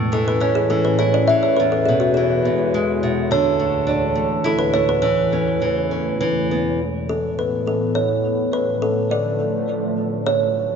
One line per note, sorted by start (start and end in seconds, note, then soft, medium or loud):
0.00 1.54 A2 medium
0.00 1.57 A2 medium
0.00 1.57 E3 medium
0.00 1.57 C#4 medium
0.12 0.69 E3 soft
0.12 0.28 A4 medium
0.28 0.42 B4 medium
0.40 1.54 C#4 soft
0.40 0.57 C#5 medium
0.55 0.62 G#4 medium
0.70 1.28 E3 soft
0.70 0.86 A4 medium
0.85 0.91 B4 medium
0.99 1.56 E4 medium
0.99 1.13 C#5 medium
1.14 1.29 D5 medium
1.28 1.58 E3 soft
1.28 1.43 E5 medium
1.43 1.58 C#5 medium
1.57 3.28 E2 medium
1.57 3.27 E2 medium
1.57 3.28 B2 medium
1.57 3.28 G#3 medium
1.57 1.73 B4 medium
1.72 1.87 A4 medium
1.85 2.44 B2 soft
1.85 2.01 G#4 medium
2.00 2.16 F#4 medium
2.14 3.27 E3 soft
2.14 2.97 G#4 medium
2.45 3.02 B2 soft
2.74 3.29 G#3 medium
3.03 3.30 B2 soft
3.31 5.01 D2 medium
3.31 5.01 A2 medium
3.31 4.99 D3 medium
3.31 6.17 E3 medium
3.31 4.41 C#5 medium
3.59 4.14 A3 soft
3.87 4.99 D4 medium
4.15 4.73 A3 soft
4.44 5.00 E4 medium
4.44 4.60 A4 medium
4.59 4.74 B4 medium
4.74 5.02 A3 soft
4.74 4.88 C#5 medium
4.89 5.03 B4 medium
5.02 6.79 E2 medium
5.02 6.19 C#3 medium
5.02 5.60 E3 medium
5.02 6.19 A3 medium
5.02 6.46 C#5 medium
5.33 5.90 C#4 soft
5.62 6.19 E3 soft
5.91 6.19 C#4 soft
6.21 6.78 E3 medium
6.51 6.80 B3 soft
6.79 10.23 A2 medium
6.79 8.52 E3 medium
6.79 8.52 B3 medium
7.09 7.39 A4 medium
7.39 7.65 B4 medium
7.67 7.97 A4 medium
7.95 8.55 C#5 medium
8.53 10.25 D3 medium
8.53 10.25 F3 medium
8.53 10.25 A3 medium
8.53 8.83 B4 medium
8.82 9.09 A4 medium
9.11 9.94 D5 medium
10.26 10.76 B2 medium
10.26 10.76 F#3 medium
10.26 10.76 D4 medium
10.26 10.76 C#5 medium